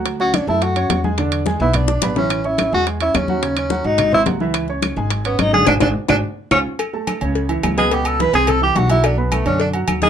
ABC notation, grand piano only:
X:1
M:4/4
L:1/8
Q:1/4=214
K:C#m
V:1 name="Grand piano"
[F,Ff] [Ccc']2 [A,Aa]2 [Ccc']2 [G,Gg] | [=D,=D=d]2 [G,Gg] [B,Bb]2 [Dd=d'] [B,Bb] [E,Ee]- | [E,Ee] [Ccc']2 [G,Gg]2 [Ccc']2 [F,Ff] | [C,Cc]2 [F,Ff] [F,Ff]2 [^B,^B^b] [F,Ff] [E,Ee]- |
[E,Ee] [Ccc']2 [G,Gg]2 [Ccc']2 [=D,=D=d] | [=DFG] [DFG] z [DFG] z2 [C^EG] z | [K:A] z [A,Aa]2 [C,Cc]2 [E,Ee]2 [B,,B,B] | [B,,B,B]2 [E,Ee] [=C,=C=c]2 [E,Ee]2 [F,Ff]- |
[F,Ff] [B,Bb]2 [D,Dd]2 [F,Ff]2 [^D,^D^d] |]